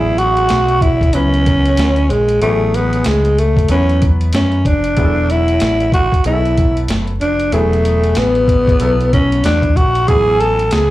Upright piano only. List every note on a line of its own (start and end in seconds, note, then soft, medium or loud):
0.00 0.68 F#3 medium
0.00 0.68 B3 medium
0.00 0.68 E4 medium
0.00 0.69 G#4 medium
1.14 1.96 F#3 medium
1.14 1.96 B3 medium
1.14 1.97 E4 medium
1.14 1.97 B4 medium
2.41 3.24 F#3 medium
2.41 3.24 B3 medium
2.41 3.24 E4 medium
2.41 2.50 G4 medium
2.49 3.28 G#4 medium
3.69 4.51 F#3 medium
3.69 4.52 B3 medium
3.69 4.52 E4 medium
3.69 4.52 B4 medium
4.97 5.79 F#3 medium
4.97 5.79 B3 medium
4.97 5.79 E4 medium
4.97 5.05 G#4 medium
5.04 5.83 A4 medium
6.25 7.07 F#3 medium
6.25 7.07 B3 medium
6.25 7.07 E4 medium
6.25 6.33 G#4 medium
6.32 7.11 A4 medium
7.52 8.35 F#3 medium
7.52 8.35 B3 medium
7.52 8.35 E4 medium
7.52 8.35 G#4 medium
8.80 9.62 F#3 medium
8.80 9.62 B3 medium
8.80 9.62 E4 medium
8.80 9.63 A4 medium
10.08 10.90 F#3 medium
10.08 10.90 B3 medium
10.08 10.90 E4 medium
10.08 10.90 G#5 medium